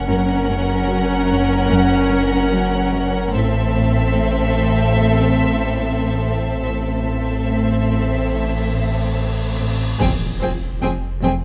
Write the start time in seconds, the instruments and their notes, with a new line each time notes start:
0.06 sub bass F#1, double bass section F#1, cello section F#2, viola section C#4, violin section A#4 F#5
0.48 cello section F#2
0.89 cello section F#3
1.30 cello section F#2
1.70 cello section F#2
2.11 cello section F#2
2.52 cello section F#3
2.93 cello section F#2
3.33 double bass section A1, sub bass A1, cello section A2, viola section C4, violin section A4 E5
3.74 cello section A2
4.15 cello section A3
4.57 cello section A2
4.96 cello section A2
5.39 cello section A2
5.80 cello section A3
6.22 cello section A2
6.62 sub bass A1, double bass section A1, cello section A2, viola section C4, violin section A4 E5, cymbal swell
7.05 cello section A2
7.48 cello section A3
7.90 cello section A2
8.32 cello section A2
8.73 cello section A2
9.16 cello section A3
9.59 cello section A2
9.99 double bass section F1, sub bass F1, cello section F2, viola section C4, violin section G#4 G5, taiko, impact
10.41 double bass section F1, cello section F2 F3, viola section C4, violin section G#4 G5
10.81 double bass section F1, cello section F2, viola section C4, violin section G#4 G5
11.22 double bass section F1, cello section F2, viola section C4, violin section G#4 G5